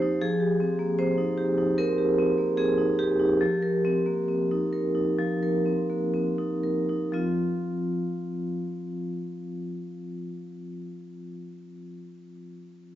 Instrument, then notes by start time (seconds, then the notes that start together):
vibraphone
Already playing: F3 A#3 C4 D#4 G4 C5
0.02 D#4
0.21 F3 G#4
0.40 G4
0.60 C4
0.79 A#3
0.99 C4 C5
1.18 D#4
1.38 G4
1.58 D#4
1.78 C4 A#4
1.98 G4
2.18 C4
2.38 A#3
2.57 C4 G#4
2.78 D#4
2.99 G4
3.20 D#4
3.41 F3
3.62 A#4
3.85 C4
4.06 A#3
4.28 C4
4.51 D#4
4.73 A#4
4.95 D#4
5.19 F3
5.43 A#4
5.66 C4
5.90 A#3
6.14 C4
6.38 D#4
6.64 A#4
6.89 D#4
7.12 F3 C4 F4